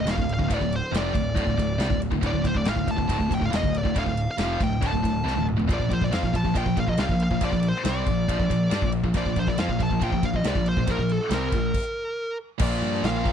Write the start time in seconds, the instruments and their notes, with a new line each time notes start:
0.00 lead electric guitar D#5
0.05 picked electric bass E1, distorted electric guitar E2 B2, snare, ride
0.11 lead electric guitar F5
0.17 picked electric bass D1, distorted electric guitar D2 A2, kick
0.29 ride
0.34 lead electric guitar F5
0.39 picked electric bass D1, distorted electric guitar D2 A2, kick
0.50 picked electric bass D1, distorted electric guitar D2 A2, lead electric guitar D5, kick, ride
0.61 picked electric bass D1, distorted electric guitar D2 A2, kick
0.72 lead electric guitar C5, ride
0.92 picked electric bass F1, distorted electric guitar F2 C3 F3, snare, ride
0.98 lead electric guitar D5
1.14 picked electric bass D1, distorted electric guitar D2 A2, kick, ride
1.35 picked electric bass D1, distorted electric guitar D2 A2, kick, ride
1.46 picked electric bass D1, distorted electric guitar D2 A2, kick
1.57 picked electric bass D1, distorted electric guitar D2 A2, kick, ride
1.78 picked electric bass C2, distorted electric guitar C3 G3, snare, ride
1.89 picked electric bass D1, distorted electric guitar D2 A2, kick
2.02 ride
2.10 picked electric bass D1, distorted electric guitar D2 A2, kick
2.21 picked electric bass D1, distorted electric guitar D2 A2, kick, ride
2.27 lead electric guitar D5
2.31 picked electric bass D1, distorted electric guitar D2 A2, kick
2.43 picked electric bass D1, distorted electric guitar D2 A2, lead electric guitar C5, kick, ride
2.54 picked electric bass D1, distorted electric guitar D2 A2, lead electric guitar D5, kick
2.65 picked electric bass A1, distorted electric guitar A2 E3, lead electric guitar F5, snare, ride
2.75 picked electric bass D1, distorted electric guitar D2 A2, kick
2.85 picked electric bass D1, distorted electric guitar D2 A2, kick, ride
2.91 lead electric guitar A5
2.96 picked electric bass D1, distorted electric guitar D2 A2, kick
3.08 picked electric bass D1, distorted electric guitar D2 A2, kick, ride
3.18 picked electric bass D1, distorted electric guitar D2 A2, kick
3.29 picked electric bass D1, distorted electric guitar D2 A2, kick, ride
3.35 lead electric guitar G5
3.39 picked electric bass D1, distorted electric guitar D2 A2, kick
3.45 lead electric guitar F5
3.50 picked electric bass E1, distorted electric guitar E2 B2, ride
3.54 lead electric guitar D#5, snare
3.62 picked electric bass D1, distorted electric guitar D2 A2, kick
3.75 lead electric guitar D5, ride
3.84 picked electric bass D1, distorted electric guitar D2 A2, kick
3.94 picked electric bass D1, distorted electric guitar D2 A2, kick, ride
3.99 lead electric guitar F5
4.05 picked electric bass D1, distorted electric guitar D2 A2, kick
4.17 ride
4.31 lead electric guitar F5
4.37 picked electric bass F1, distorted electric guitar F2 C3 F3, snare, ride
4.60 picked electric bass D1, distorted electric guitar D2 A2, lead electric guitar G5, kick, ride
4.81 picked electric bass D1, distorted electric guitar D2 A2, kick, ride
4.87 lead electric guitar A5
4.92 picked electric bass D1, distorted electric guitar D2 A2, kick
5.02 picked electric bass D1, distorted electric guitar D2 A2, kick, ride
5.24 picked electric bass C2, distorted electric guitar C3 G3, snare
5.35 picked electric bass D1, distorted electric guitar D2 A2, high tom
5.49 mid tom
5.56 picked electric bass D1, distorted electric guitar D2 A2, floor tom
5.67 picked electric bass A#1, distorted electric guitar A#2 F3, kick, ride
5.73 lead electric guitar D5
5.79 picked electric bass A#1, distorted electric guitar A#2 F3, kick
5.90 picked electric bass A#1, distorted electric guitar A#2 F3, lead electric guitar C5, kick, ride
6.01 picked electric bass A#1, distorted electric guitar A#2 F3, lead electric guitar D5, kick, snare
6.11 picked electric bass F2, distorted electric guitar F3 C4, lead electric guitar F5, snare, ride
6.22 picked electric bass A#1, distorted electric guitar A#2 F3, kick
6.33 picked electric bass A#1, distorted electric guitar A#2 F3, lead electric guitar A5, kick, ride
6.44 picked electric bass A#1, distorted electric guitar A#2 F3, kick
6.54 picked electric bass A#1, distorted electric guitar A#2 F3, lead electric guitar G5, kick, ride
6.66 picked electric bass A#1, distorted electric guitar A#2 F3, kick
6.76 picked electric bass A#1, distorted electric guitar A#2 F3, lead electric guitar F5, kick, ride
6.86 picked electric bass A#1, distorted electric guitar A#2 F3, lead electric guitar D#5, kick
6.97 picked electric bass C2, distorted electric guitar C3 G3, lead electric guitar F5, snare, ride
7.09 picked electric bass A#1, distorted electric guitar A#2 F3, kick
7.20 lead electric guitar F5, ride
7.31 picked electric bass A#1, distorted electric guitar A#2 F3, kick
7.41 picked electric bass A#1, distorted electric guitar A#2 F3, lead electric guitar D5, kick, ride
7.52 picked electric bass A#1, distorted electric guitar A#2 F3, kick
7.63 ride
7.68 lead electric guitar C5
7.75 snare
7.84 picked electric bass C2, distorted electric guitar C3 G3 C4, snare, ride
7.88 lead electric guitar D5
8.06 picked electric bass A#1, distorted electric guitar A#2 F3, kick, ride
8.28 picked electric bass A#1, distorted electric guitar A#2 F3, kick, ride
8.39 picked electric bass A#1, distorted electric guitar A#2 F3, kick
8.49 picked electric bass A#1, distorted electric guitar A#2 F3, kick, ride
8.70 picked electric bass G2, distorted electric guitar G3 D4, snare, ride
8.82 picked electric bass A#1, distorted electric guitar A#2 F3, kick
8.92 ride
9.04 picked electric bass A#1, distorted electric guitar A#2 F3, kick
9.14 picked electric bass A#1, distorted electric guitar A#2 F3, lead electric guitar D5, kick, ride
9.25 picked electric bass A#1, distorted electric guitar A#2 F3, kick
9.36 picked electric bass A#1, distorted electric guitar A#2 F3, lead electric guitar C5, kick, ride
9.47 picked electric bass A#1, distorted electric guitar A#2 F3, lead electric guitar D5, kick, snare
9.58 picked electric bass F2, distorted electric guitar F3 C4, lead electric guitar F5, snare, ride
9.68 picked electric bass A#1, distorted electric guitar A#2 F3, kick
9.79 picked electric bass A#1, distorted electric guitar A#2 F3, lead electric guitar A5, kick, ride
9.89 picked electric bass A#1, distorted electric guitar A#2 F3, kick
9.99 picked electric bass A#1, distorted electric guitar A#2 F3, kick, ride
10.04 lead electric guitar G5
10.11 picked electric bass A#1, distorted electric guitar A#2 F3, kick
10.23 picked electric bass A#1, distorted electric guitar A#2 F3, lead electric guitar F5, kick, ride
10.33 picked electric bass A#1, distorted electric guitar A#2 F3, lead electric guitar D#5, kick
10.44 picked electric bass C2, distorted electric guitar C3 G3, snare, ride
10.48 lead electric guitar D5
10.55 picked electric bass A#1, distorted electric guitar A#2 F3, kick
10.66 lead electric guitar C5, ride
10.77 picked electric bass A#1, distorted electric guitar A#2 F3, kick
10.87 picked electric bass A#1, distorted electric guitar A#2 F3, kick, ride
10.91 lead electric guitar A#4
10.98 picked electric bass A#1, distorted electric guitar A#2 F3, kick
11.09 lead electric guitar A4, ride
11.29 picked electric bass C2, distorted electric guitar C3 G3 C4, snare, ride
11.34 lead electric guitar A#4
11.52 picked electric bass A#1, distorted electric guitar A#2 F3, kick, ride
11.74 kick, crash
12.58 picked electric bass A#1, distorted electric guitar A#2 F3 A#3, kick, crash
12.62 lead electric guitar D5
12.82 picked electric bass G2, crash
12.94 snare
13.03 picked electric bass A#1, lead electric guitar F5, snare, crash
13.23 picked electric bass A#1, distorted electric guitar A#2 F3 A#3, kick, crash